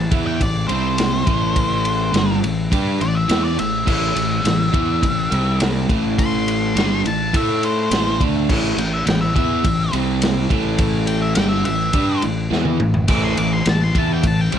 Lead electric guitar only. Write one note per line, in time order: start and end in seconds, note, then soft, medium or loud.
0.00 0.24 A5 medium
0.27 0.41 G5 medium
0.42 0.67 D5 medium
0.68 2.38 C5 medium
3.01 3.15 D5 loud
3.15 3.43 E5 medium
3.44 3.58 D5 medium
3.59 3.87 E5 medium
3.88 5.57 E5 loud
6.19 7.03 C6 loud
7.07 7.34 A5 medium
7.36 7.63 E5 loud
7.65 8.20 C5 loud
8.79 8.93 G5 loud
8.93 9.06 E5 loud
9.07 9.21 G5 loud
9.21 9.34 E5 medium
9.36 9.92 E5 loud
11.07 11.21 G5 loud
11.22 11.35 E5 medium
11.35 11.49 G5 loud
11.49 11.64 E5 medium
11.65 12.21 E5 loud
13.11 13.24 D6 loud
13.24 13.38 C6 medium
13.38 13.52 D6 medium
13.53 13.67 C6 loud
13.69 13.82 A5 medium
13.84 13.96 C6 medium
13.98 14.11 A5 medium
14.14 14.26 G5 medium
14.27 14.41 A5 loud
14.41 14.54 G5 medium